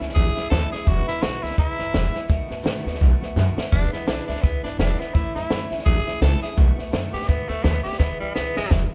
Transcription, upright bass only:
0.00 0.09 C#2 medium
0.16 0.28 A1 medium
0.36 muted upright bass stroke medium
0.51 0.64 D#2 loud
0.71 muted upright bass stroke medium
0.87 1.00 E1 medium
1.08 muted upright bass stroke medium
1.23 1.35 B1 loud
1.43 1.52 C#2 medium
1.58 1.71 C#2 medium
1.80 1.88 G#1 medium
1.94 2.07 E1 medium
2.14 muted upright bass stroke medium
2.30 2.42 B1 loud
2.50 2.59 A2 medium
2.65 2.77 G#2 medium
2.86 2.95 D#2 medium
3.01 3.14 B1 medium
3.21 muted upright bass stroke medium
3.36 3.49 F#2 loud
3.57 muted upright bass stroke medium
3.73 3.85 E1 medium
3.92 muted upright bass stroke medium
4.07 4.20 B1 loud
4.28 4.37 C#2 medium
4.43 4.56 C#2 medium
4.63 4.73 G#1 medium
4.79 4.91 E1 medium
5.00 muted upright bass stroke medium
5.15 5.28 A1 loud
5.35 5.44 F#2 medium
5.50 5.63 F#2 medium
5.71 5.80 C#2 medium
5.86 5.99 A1 medium
6.07 muted upright bass stroke medium
6.21 6.34 C#2 medium
6.42 muted upright bass stroke medium
6.58 6.70 B1 medium
6.78 muted upright bass stroke medium
6.93 7.05 F#2 medium
7.14 7.23 A2 medium
7.29 7.41 G#2 medium
7.49 7.58 D#2 medium
7.64 7.77 D#2 loud
7.86 muted upright bass stroke medium
8.00 8.12 E1 loud
8.21 8.30 C#2 medium
8.36 8.49 C#2 medium
8.57 8.66 G#1 medium
8.71 8.84 E1 medium

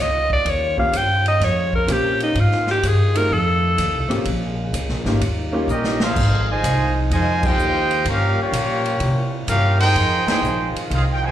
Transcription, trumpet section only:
5.70 6.00 C#4 medium
5.70 5.99 G4 medium
5.70 6.00 A#4 medium
5.70 6.00 D#5 medium
6.02 6.46 D#4 medium
6.02 6.46 G#4 medium
6.02 6.46 C5 medium
6.02 6.46 F5 loud
6.50 6.97 F4 loud
6.50 6.97 C5 loud
6.50 6.97 D#5 loud
6.50 6.97 G#5 loud
7.12 7.42 F4 medium
7.12 7.42 C5 medium
7.12 7.42 D#5 medium
7.12 7.42 G#5 loud
7.45 8.07 F4 loud
7.45 8.07 C5 loud
7.45 8.07 D#5 loud
7.45 8.07 G5 loud
8.09 8.38 C#4 medium
8.09 8.38 G4 medium
8.09 8.38 A#4 medium
8.09 8.38 F5 loud
8.42 9.35 A#3 medium
8.42 9.03 F4 medium
8.42 9.35 G4 medium
8.42 9.35 C#5 loud
9.48 9.78 C#4 loud
9.48 9.79 G4 medium
9.48 9.79 A#4 loud
9.48 9.79 F5 loud
9.80 10.25 D#4 loud
9.80 10.25 G#4 loud
9.80 10.25 C5 loud
9.80 10.25 G5 loud
10.28 10.72 D#4 medium
10.28 10.73 G#4 medium
10.28 10.72 C5 loud
10.28 10.72 G5 loud
10.93 11.03 D#4 medium
10.93 11.04 G#4 medium
10.93 11.03 C5 medium
10.93 11.03 F5 medium
11.13 11.23 G5 medium
11.24 11.31 D#4 loud
11.24 11.31 C5 loud
11.24 11.31 G5 loud
11.24 11.31 G#5 loud

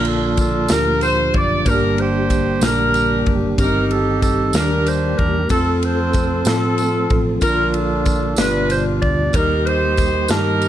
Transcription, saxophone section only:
0.00 0.67 D4 medium
0.00 0.67 F4 medium
0.08 0.38 A4 medium
0.40 0.69 A4 medium
0.71 1.03 A#4 loud
1.03 1.32 C5 loud
1.35 1.67 D5 loud
1.67 2.59 D4 medium
1.67 2.00 G4 medium
1.67 1.98 A#4 loud
1.99 2.65 G4 medium
1.99 2.63 C5 loud
2.64 3.56 D4 medium
2.64 3.56 G4 medium
2.64 3.35 A#4 loud
3.60 4.52 D#4 medium
3.60 4.52 G4 medium
3.60 3.89 A#4 loud
3.91 4.21 A4 medium
4.23 4.52 A4 loud
4.55 5.47 D4 medium
4.55 5.48 G4 medium
4.55 4.87 A#4 loud
4.87 5.19 C5 medium
5.18 5.50 A#4 medium
5.51 6.44 C4 medium
5.51 5.85 F4 medium
5.51 5.80 A4 medium
5.84 6.47 F4 medium
5.84 6.45 A4 medium
5.84 6.47 C5 loud
6.46 7.25 C4 medium
6.46 7.25 F4 medium
6.46 7.18 A4 medium
7.42 8.35 D4 medium
7.42 8.35 F4 medium
7.42 7.72 A#4 loud
7.74 8.05 A4 medium
8.06 8.36 A4 medium
8.38 9.31 D4 medium
8.38 9.31 F4 medium
8.38 8.70 B4 loud
8.70 8.84 C5 loud
9.02 9.32 D5 medium
9.34 9.66 D#4 medium
9.34 9.66 G4 medium
9.34 9.66 A#4 medium
9.65 10.31 D#4 medium
9.65 10.30 G4 medium
9.65 10.30 C5 medium
10.30 10.68 D#4 medium
10.30 10.68 G4 medium
10.30 10.68 A#4 medium

